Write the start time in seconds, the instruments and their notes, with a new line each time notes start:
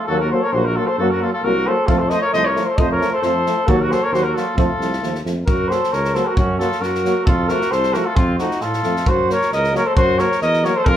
0.07 tuba D#2, trombone F#3, euphonium A#3, flugelhorn F#4, trumpet A4
0.20 flugelhorn F#4, trumpet A#4
0.31 trombone F#3, euphonium A#3, flugelhorn A4, trumpet C5
0.42 flugelhorn A#4, trumpet C#5
0.52 tuba A#1, trombone F#3, euphonium A#3, flugelhorn F#4, trumpet C5
0.65 flugelhorn F#4, trumpet A#4
0.76 trombone F#3, euphonium A#3, flugelhorn F4, trumpet A4
0.87 flugelhorn A4, trumpet C5
0.98 tuba F#2, trombone F#3, euphonium A#3, flugelhorn F#4, trumpet A4
1.10 flugelhorn F#4, trumpet A#4
1.21 trombone F#3, euphonium A#3, flugelhorn F4, trumpet A4
1.33 flugelhorn F4, trumpet A4
1.43 tuba C2, trombone F#3, euphonium A#3, flugelhorn F#4, trumpet A#4
1.67 trombone F#3, euphonium A#3, flugelhorn A4, trumpet C5
1.87 tuba F2, trombone F3, euphonium A3, flugelhorn F4, trumpet A4, kick
1.99 flugelhorn A4, trumpet C5
2.09 trombone F3, euphonium A3, flugelhorn C5, trumpet D#5, snare
2.21 flugelhorn A#4, trumpet C#5
2.33 tuba C2, trombone F3, euphonium A3, flugelhorn C5, trumpet D#5, snare
2.45 flugelhorn A#4, trumpet C#5
2.55 trombone F3, euphonium A3, snare
2.65 flugelhorn A4, trumpet C5
2.77 tuba F2, trombone F3, euphonium A3, flugelhorn C5, trumpet D#5, kick
2.90 flugelhorn A#4, trumpet C#5
3.00 trombone F3, euphonium A3, snare
3.12 flugelhorn A4, trumpet C5
3.22 tuba F2, trombone F3, euphonium A3, flugelhorn A4, trumpet C5, snare
3.45 trombone F3, euphonium A3, snare
3.65 tuba D#2, trombone F#3, euphonium A#3, flugelhorn F#4, trumpet A4, kick
3.81 flugelhorn F#4, trumpet A#4
3.88 trombone F#3, euphonium A#3, trumpet C5, snare
3.92 flugelhorn A4
4.03 flugelhorn A#4, trumpet C#5
4.12 tuba D#2, trombone F#3, euphonium A#3, flugelhorn F#4, trumpet C5, snare
4.24 flugelhorn F#4, trumpet A#4
4.34 trombone F#3, euphonium A#3, flugelhorn F4, trumpet A4, snare
4.56 tuba F2, trombone F3, euphonium A3, flugelhorn F4, trumpet A4, kick
4.79 tuba C2, trombone F3, euphonium A3, snare
4.93 snare
5.01 tuba D#2, trombone F3, euphonium A3, snare
5.15 snare
5.23 tuba F2, trombone F3, euphonium A3, snare
5.46 tuba F#2, flugelhorn F#4, trumpet A#4, kick
5.68 trombone F#3, euphonium A#3, flugelhorn A4, trumpet C5, snare
5.84 snare
5.92 tuba C#2, flugelhorn A#4, trumpet C#5, snare
6.04 snare
6.14 trombone F#3, euphonium A#3, flugelhorn A4, trumpet C5, snare
6.25 flugelhorn F#4, trumpet A#4
6.36 tuba F#2, flugelhorn C#4, trumpet F#4, kick
6.59 trombone F#3, euphonium A#3, flugelhorn F4, trumpet A4, snare
6.72 snare
6.81 tuba F#2, flugelhorn F#4, trumpet A#4, snare
6.95 snare
7.05 trombone F#3, euphonium A#3, snare
7.25 tuba F2, flugelhorn F4, trumpet A4, kick
7.49 trombone F3, euphonium A3, flugelhorn F#4, trumpet A#4, snare
7.61 snare
7.71 tuba C2, flugelhorn A4, trumpet C5, snare
7.83 snare
7.93 trombone F3, euphonium A3, flugelhorn F#4, trumpet A#4, snare
8.05 flugelhorn F4, trumpet A4
8.16 tuba F2, flugelhorn C4, trumpet F4, kick
8.38 trombone F3, euphonium A3, flugelhorn D#4, trumpet F#4, snare
8.51 snare
8.61 tuba A2, flugelhorn F4, trumpet A4, snare
8.73 snare
8.83 tuba F2, trombone F3, euphonium A3, snare
8.96 snare
9.06 tuba F#2, flugelhorn F#4, trumpet C5, kick
9.28 trombone F#3, euphonium A#3, flugelhorn A#4, snare
9.32 trumpet C#5
9.42 snare
9.52 tuba C#2, flugelhorn A#4, trumpet D#5, snare
9.64 snare
9.73 trombone F#3, euphonium A#3, flugelhorn A#4, trumpet C#5, snare
9.85 flugelhorn A4, trumpet C5
9.96 tuba F#2, flugelhorn F#4, trumpet C5, kick
10.18 trombone F#3, euphonium A#3, flugelhorn A#4, trumpet C#5, snare
10.32 snare
10.41 tuba E2, flugelhorn A#4, trumpet D#5, snare
10.54 snare
10.63 trombone F#3, euphonium A#3, flugelhorn A#4, trumpet C#5, snare
10.76 flugelhorn A4, trumpet C5
10.85 tuba F2, flugelhorn F4, trumpet A#4, kick